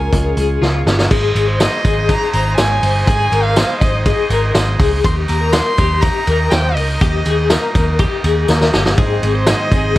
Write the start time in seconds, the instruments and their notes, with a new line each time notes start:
Already playing: steel-string acoustic guitar G#3 C#4 F4, transistor combo organ F4 G#4 C#5, clean electric guitar A#4, violin G#5
0.12 picked electric bass C#2, steel-string acoustic guitar C#3 G#3 C#4 F4, kick, closed hi-hat
0.37 picked electric bass C#2, steel-string acoustic guitar G#3 C#4 F4, clean electric guitar G#4, closed hi-hat
0.61 picked electric bass C#2, steel-string acoustic guitar C#3 G#3 C#4 F4, clean electric guitar F4, snare
0.86 picked electric bass G1, steel-string acoustic guitar G#3 C#4 F4, clean electric guitar G4, snare
0.99 snare
1.11 picked electric bass G#1, transistor combo organ D#4 G#4 C5 D#5, clean electric guitar G#4, kick, crash, tambourine
1.35 picked electric bass G#1, ride, tambourine
1.48 clean electric guitar C5
1.60 violin D#5, snare, ride, tambourine
1.84 picked electric bass G#1, clean electric guitar G#4, kick, ride, tambourine
2.09 violin A#5, kick, ride, tambourine
2.32 picked electric bass G#1, clean electric guitar C5, violin A#5, ride, tambourine
2.56 picked electric bass G#1, clean electric guitar C#5, violin G#5, snare, ride, tambourine
2.83 picked electric bass G1, clean electric guitar C5, open hi-hat, ride, tambourine
3.06 picked electric bass G#1, clean electric guitar G#4, violin G#5, kick, hi-hat pedal, ride, tambourine
3.32 picked electric bass G#1, clean electric guitar A#4, ride, tambourine
3.43 violin F5
3.56 clean electric guitar C5, snare, ride, tambourine
3.80 picked electric bass G#1, violin D#5, kick, ride, tambourine
4.05 clean electric guitar G#4, violin D#5, kick, ride, tambourine
4.30 picked electric bass G#1, clean electric guitar A#4, ride, tambourine
4.55 picked electric bass G#1, clean electric guitar C5, snare, ride, tambourine
4.79 picked electric bass C#2, clean electric guitar G#4, kick, open hi-hat, ride, tambourine
5.04 picked electric bass D#2, transistor combo organ D#4 G4 A#4 D#5, clean electric guitar G4, violin C6, kick, hi-hat pedal, ride, tambourine
5.28 picked electric bass D#2, violin A#5, ride, tambourine
5.41 clean electric guitar A#4
5.52 violin C6, snare, ride, tambourine
5.78 picked electric bass D#2, clean electric guitar G4, kick, ride, tambourine
6.01 violin A#5, kick, ride, tambourine
6.27 picked electric bass D#2, clean electric guitar A#4, ride, tambourine
6.51 picked electric bass D#2, clean electric guitar C5, violin G5, snare, ride, tambourine
6.75 picked electric bass C#2, clean electric guitar A#4, violin D#5, open hi-hat, ride
7.01 picked electric bass D#2, clean electric guitar G4, kick, hi-hat pedal, ride
7.25 picked electric bass D#2, clean electric guitar G#4, ride, tambourine
7.50 clean electric guitar A#4, snare, ride, tambourine
7.75 picked electric bass D#2, kick, ride, tambourine
7.99 clean electric guitar G4, kick, ride, tambourine
8.24 picked electric bass D#2, clean electric guitar G#4, ride, tambourine
8.48 picked electric bass D#2, clean electric guitar A#4, snare, tambourine
8.61 snare
8.73 picked electric bass G1, clean electric guitar G4, snare, tambourine
8.86 snare
8.97 picked electric bass G#1, steel-string acoustic guitar G#2 D#3 G#3 C4 D#4, transistor combo organ D#4 G#4 C5 D#5, clean electric guitar G#4, kick, ride, tambourine
9.22 picked electric bass G#1, steel-string acoustic guitar G#3 C4 D#4, ride, tambourine
9.35 clean electric guitar C5
9.47 steel-string acoustic guitar G#2 D#3 G#3 C4 D#4, violin D#5, snare, ride, tambourine
9.70 picked electric bass G#1, steel-string acoustic guitar C4 D#4, clean electric guitar G#4, kick, ride, tambourine